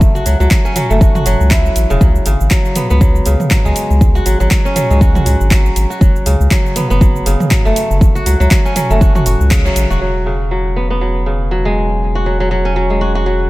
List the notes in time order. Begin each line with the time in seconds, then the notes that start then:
Already playing: F#1 C#3 F#3 A3 B3
0.01 kick, cabasa
0.15 F#4, cabasa
0.26 C#2 F#3, open hi-hat, cabasa
0.40 C#2 F#3, cabasa
0.51 F#3, kick, clap, cabasa
0.65 C#4, cabasa
0.76 F#3, mid tom, open hi-hat, cabasa
0.90 F#1 A3, cabasa
1.01 F#4, kick, cabasa
1.15 F#4, mid tom, cabasa
1.26 F#1 F#3, open hi-hat, cabasa
1.40 C#2, cabasa
1.51 E4, kick, clap, cabasa
1.66 cabasa
1.76 A1, open hi-hat, cabasa
1.90 E1 C#3, cabasa
2.01 C#2 F#3, kick, cabasa
2.16 cabasa
2.26 G#1 C#3, open hi-hat, cabasa
2.40 G#1, cabasa
2.51 F#3, kick, clap, cabasa
2.65 cabasa
2.76 B3, mid tom, open hi-hat, cabasa
2.90 C#2 B3, cabasa
3.01 F#3, kick, cabasa
3.15 cabasa
3.26 C#2 C#3, open hi-hat, cabasa
3.40 mid tom, cabasa
3.51 F#3, kick, clap, cabasa
3.65 C#2 G#3, cabasa
3.76 open hi-hat, cabasa
3.90 C#2, cabasa
4.01 kick, cabasa
4.15 F#4, cabasa
4.26 G#1 F#3, open hi-hat, cabasa
4.40 G#1 F#3, cabasa
4.51 F#3, kick, clap, cabasa
4.65 C#4, cabasa
4.76 F#3, mid tom, open hi-hat, cabasa
4.90 C#2 G#3, cabasa
5.01 F#4, kick, cabasa
5.15 F#4, mid tom, cabasa
5.26 C#2 F#3, open hi-hat, cabasa
5.40 G#1, cabasa
5.51 F#3, kick, clap, cabasa
5.66 cabasa
5.76 G#1, open hi-hat, cabasa
5.90 F#4, cabasa
6.01 F#1 F#3, kick, cabasa
6.16 cabasa
6.26 C#2 C#3, open hi-hat, cabasa
6.40 C#2, cabasa
6.51 F#3, kick, clap, cabasa
6.66 cabasa
6.76 B3, mid tom, open hi-hat, cabasa
6.90 F#1 B3, cabasa
7.01 F#3, kick, cabasa
7.16 cabasa
7.26 F#1 C#3, open hi-hat, cabasa
7.40 mid tom, cabasa
7.51 F#3, kick, clap, cabasa
7.65 F#1 A3, cabasa
7.76 open hi-hat, cabasa
7.90 F#1, cabasa
8.01 kick, cabasa
8.15 F#4, cabasa
8.26 C#2 F#3, open hi-hat, cabasa
8.40 C#2 F#3, cabasa
8.51 F#3, kick, clap, cabasa
8.65 C#4, cabasa
8.76 F#3, mid tom, open hi-hat, cabasa
8.90 F#1 A3, cabasa
9.01 F#4, kick, cabasa
9.15 F#4, mid tom, cabasa
9.26 F#1 F#4, open hi-hat, cabasa
9.40 C#2, cabasa
9.51 C#3, kick, clap, cabasa
9.65 F#3, cabasa
9.76 A1, open hi-hat, cabasa
9.90 E1 F#4, cabasa
10.01 E1 F#3
10.26 C#3
10.51 F#3
10.76 B3
10.90 B3
11.01 F#3
11.26 C#3
11.51 F#3
11.65 G#3
12.15 F#4
12.26 F#3
12.40 F#3
12.51 F#3
12.65 C#4
12.76 F#3
12.90 G#3
13.01 F#4
13.15 F#4
13.26 F#3